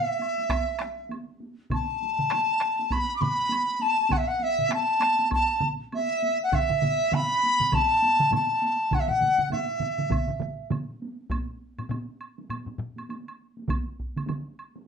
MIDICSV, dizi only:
0, 0, Header, 1, 2, 480
1, 0, Start_track
1, 0, Tempo, 602410
1, 1364, Time_signature, 4, 2, 24, 8
1, 5679, Tempo, 596421
1, 11910, End_track
2, 0, Start_track
2, 0, Title_t, "Dizi"
2, 0, Program_c, 0, 73
2, 0, Note_on_c, 0, 76, 71
2, 885, Note_off_c, 0, 76, 0
2, 1379, Note_on_c, 0, 81, 85
2, 2325, Note_on_c, 0, 83, 88
2, 2337, Note_off_c, 0, 81, 0
2, 2513, Note_off_c, 0, 83, 0
2, 2517, Note_on_c, 0, 86, 74
2, 2564, Note_on_c, 0, 83, 106
2, 2576, Note_off_c, 0, 86, 0
2, 3040, Note_on_c, 0, 81, 88
2, 3052, Note_off_c, 0, 83, 0
2, 3283, Note_on_c, 0, 78, 76
2, 3295, Note_off_c, 0, 81, 0
2, 3325, Note_on_c, 0, 76, 73
2, 3337, Note_off_c, 0, 78, 0
2, 3404, Note_on_c, 0, 78, 80
2, 3416, Note_off_c, 0, 76, 0
2, 3528, Note_on_c, 0, 76, 84
2, 3540, Note_off_c, 0, 78, 0
2, 3767, Note_off_c, 0, 76, 0
2, 3773, Note_on_c, 0, 81, 96
2, 4217, Note_off_c, 0, 81, 0
2, 4251, Note_on_c, 0, 81, 93
2, 4515, Note_off_c, 0, 81, 0
2, 4737, Note_on_c, 0, 76, 81
2, 5087, Note_off_c, 0, 76, 0
2, 5125, Note_on_c, 0, 78, 80
2, 5216, Note_on_c, 0, 76, 83
2, 5227, Note_off_c, 0, 78, 0
2, 5690, Note_on_c, 0, 83, 100
2, 5702, Note_off_c, 0, 76, 0
2, 6174, Note_on_c, 0, 81, 92
2, 6187, Note_off_c, 0, 83, 0
2, 6651, Note_off_c, 0, 81, 0
2, 6666, Note_on_c, 0, 81, 86
2, 7138, Note_on_c, 0, 78, 76
2, 7150, Note_off_c, 0, 81, 0
2, 7184, Note_on_c, 0, 76, 67
2, 7196, Note_off_c, 0, 78, 0
2, 7251, Note_on_c, 0, 78, 84
2, 7263, Note_off_c, 0, 76, 0
2, 7599, Note_off_c, 0, 78, 0
2, 7604, Note_on_c, 0, 76, 75
2, 8535, Note_off_c, 0, 76, 0
2, 11910, End_track
0, 0, End_of_file